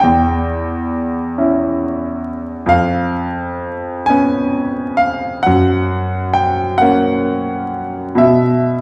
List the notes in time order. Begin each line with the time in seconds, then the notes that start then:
0.00 E2 G5
1.38 C#4 E4
2.66 F2 F5
4.06 B3 C#4 G#5
4.97 F5
5.43 F#2 F#5
6.33 G5
6.78 A#3 F#5
6.82 C#4
8.15 B2 E5